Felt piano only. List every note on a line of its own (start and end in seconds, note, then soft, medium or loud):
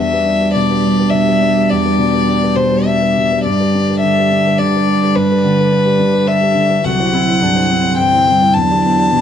0.00 0.11 E2 medium
0.12 0.25 G4 soft
0.12 0.25 B4 soft
0.26 0.49 D4 soft
0.41 0.53 G4 soft
0.41 0.53 B4 soft
0.55 0.78 B2 soft
0.70 0.82 G4 soft
0.70 0.82 B4 soft
0.86 1.07 D4 soft
0.98 1.11 G4 soft
0.98 1.11 B4 soft
1.14 1.36 B2 soft
1.27 1.39 G4 soft
1.27 1.40 B4 soft
1.41 1.64 D4 soft
1.57 1.69 G4 soft
1.57 1.69 B4 soft
1.72 1.85 E2 medium
1.85 1.98 G4 soft
1.85 1.98 B4 soft
1.98 2.22 B2 soft
2.13 2.26 G4 soft
2.13 2.26 B4 soft
2.28 2.51 D4 soft
2.42 2.55 G4 soft
2.42 2.56 B4 soft
2.56 2.79 B2 soft
2.70 2.83 G4 soft
2.70 2.84 B4 soft
2.86 3.09 D4 soft
3.01 3.14 G4 soft
3.01 3.14 B4 soft
3.17 3.39 B2 soft
3.32 3.43 G4 soft
3.32 3.43 B4 soft
3.46 3.58 G2 soft
3.60 3.72 G4 soft
3.60 3.72 B4 soft
3.75 3.96 D4 soft
3.89 4.01 G4 soft
3.89 4.01 B4 soft
4.03 4.25 D3 soft
4.18 4.29 G4 soft
4.18 4.30 B4 soft
4.31 4.53 D4 soft
4.46 4.58 G4 soft
4.46 4.58 B4 soft
4.60 4.82 D3 soft
4.75 4.87 G4 soft
4.75 4.87 B4 soft
4.87 5.10 D4 soft
5.03 5.14 G4 soft
5.03 5.15 B4 soft
5.16 5.29 G2 soft
5.31 5.43 G4 soft
5.31 5.43 B4 soft
5.44 5.66 D3 soft
5.60 5.71 B4 soft
5.72 5.94 D4 soft
5.85 5.98 G4 soft
5.85 5.98 B4 soft
5.99 6.22 D3 soft
6.14 6.27 B4 soft
6.27 6.50 D4 soft
6.41 6.54 G4 soft
6.41 6.55 B4 soft
6.55 6.78 D3 soft
6.69 6.83 G4 soft
6.69 6.83 B4 soft
6.85 6.99 C2 medium
6.99 7.12 E4 soft
6.99 7.12 C5 soft
7.13 7.36 C4 soft
7.28 7.40 E4 soft
7.28 7.41 C5 soft
7.42 7.64 G2 soft
7.56 7.69 E4 soft
7.56 7.69 C5 soft
7.71 7.93 C4 soft
7.84 7.97 E4 soft
7.84 7.97 C5 soft
7.98 8.21 G2 soft
8.13 8.25 E4 soft
8.13 8.26 C5 soft
8.28 8.50 C4 soft
8.42 8.54 E4 soft
8.42 8.54 C5 soft
8.56 8.69 E2 medium
8.70 8.82 G4 soft
8.70 8.83 D5 soft
8.85 9.07 B3 soft
8.98 9.10 G4 soft
8.98 9.10 D5 soft
9.12 9.21 B2 soft